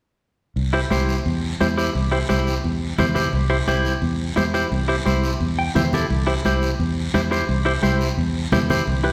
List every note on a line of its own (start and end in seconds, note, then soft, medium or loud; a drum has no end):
0.56 0.84 C2 loud
0.56 high conga soft
0.56 long guiro medium
0.73 0.79 E4 medium
0.73 0.80 G4 medium
0.73 0.80 C5 medium
0.90 1.19 C2 medium
0.90 1.15 E4 medium
0.90 1.15 G4 medium
0.90 1.16 C5 medium
0.90 high conga medium
0.90 short guiro medium
1.09 short guiro medium
1.26 1.53 E2 loud
1.26 high conga soft
1.26 long guiro medium
1.60 1.88 E2 medium
1.60 1.66 E4 medium
1.60 1.67 G4 medium
1.60 1.67 C5 medium
1.60 high conga medium
1.60 short guiro medium
1.77 1.90 E4 medium
1.77 1.90 G4 medium
1.77 1.90 C5 medium
1.77 short guiro medium
1.95 2.23 C2 medium
1.95 high conga soft
1.95 long guiro medium
2.12 2.18 E4 medium
2.12 2.18 G4 medium
2.12 2.18 C5 medium
2.29 2.58 C2 medium
2.29 2.53 E4 medium
2.29 2.54 G4 medium
2.29 2.54 C5 medium
2.29 high conga medium
2.29 short guiro medium
2.47 short guiro medium
2.64 2.92 E2 medium
2.64 high conga soft
2.64 long guiro medium
2.98 3.26 E2 medium
2.98 3.05 E4 medium
2.98 3.05 G4 medium
2.98 3.05 C5 medium
2.98 high conga medium
2.98 low conga medium
2.98 short guiro medium
3.15 3.28 E4 medium
3.15 3.28 G4 medium
3.15 3.28 C5 medium
3.15 low conga medium
3.15 short guiro medium
3.32 3.61 C2 loud
3.32 high conga soft
3.32 long guiro medium
3.50 3.56 E4 medium
3.50 3.56 G4 medium
3.50 3.56 C5 medium
3.67 3.95 C2 medium
3.67 3.92 E4 medium
3.67 3.92 G4 medium
3.67 3.93 C5 medium
3.67 high conga medium
3.67 short guiro medium
3.85 short guiro medium
4.02 4.30 E2 medium
4.02 high conga soft
4.02 long guiro medium
4.36 4.65 E2 medium
4.36 4.43 E4 medium
4.36 4.43 G4 medium
4.36 4.43 C5 medium
4.36 high conga medium
4.36 short guiro medium
4.54 4.66 E4 medium
4.54 4.66 G4 medium
4.54 4.67 C5 medium
4.54 short guiro medium
4.71 4.99 C2 loud
4.71 high conga soft
4.71 long guiro medium
4.88 4.95 E4 medium
4.88 4.95 G4 medium
4.88 4.95 C5 medium
5.05 5.34 C2 medium
5.05 5.30 E4 medium
5.05 5.30 G4 medium
5.05 5.30 C5 medium
5.05 high conga medium
5.05 short guiro medium
5.24 short guiro medium
5.40 5.68 E2 loud
5.40 high conga soft
5.40 long guiro medium
5.59 5.75 G5 medium
5.75 6.03 E2 medium
5.75 5.81 E4 medium
5.75 5.82 G4 medium
5.75 5.82 C5 medium
5.75 5.84 E5 medium
5.75 high conga medium
5.75 low conga medium
5.75 short guiro medium
5.84 5.94 C5 medium
5.93 6.05 E4 medium
5.93 6.06 G4 medium
5.93 6.06 A4 medium
5.93 low conga medium
5.93 short guiro medium
6.10 6.38 C2 loud
6.10 high conga soft
6.10 long guiro medium
6.27 6.33 E4 medium
6.27 6.33 G4 medium
6.27 6.34 C5 medium
6.45 6.73 C2 medium
6.45 6.69 E4 medium
6.45 6.70 G4 medium
6.45 6.69 C5 medium
6.45 high conga medium
6.45 short guiro medium
6.62 short guiro medium
6.79 7.07 E2 loud
6.79 high conga soft
6.79 long guiro medium
7.14 7.42 E2 loud
7.14 7.20 E4 medium
7.14 7.20 G4 medium
7.14 7.20 C5 medium
7.14 high conga medium
7.14 short guiro medium
7.31 7.43 E4 medium
7.31 7.43 G4 medium
7.31 7.44 C5 medium
7.31 short guiro medium
7.49 7.76 C2 loud
7.49 high conga soft
7.49 long guiro medium
7.65 7.72 E4 medium
7.65 7.72 G4 medium
7.65 7.72 C5 medium
7.83 8.11 C2 medium
7.83 8.07 E4 medium
7.83 8.07 G4 medium
7.83 8.08 C5 medium
7.83 high conga medium
7.83 short guiro medium
8.01 short guiro medium
8.17 8.45 E2 loud
8.17 high conga soft
8.17 long guiro medium
8.52 8.80 E2 medium
8.52 8.58 E4 medium
8.52 8.59 G4 medium
8.52 8.59 C5 medium
8.52 high conga medium
8.52 low conga medium
8.52 short guiro medium
8.70 8.82 E4 medium
8.70 8.82 G4 medium
8.70 8.82 C5 medium
8.70 low conga medium
8.70 short guiro medium
8.87 9.12 C2 loud
8.87 high conga soft
8.87 long guiro medium
9.03 9.10 E4 medium
9.03 9.10 G4 medium
9.03 9.10 B4 medium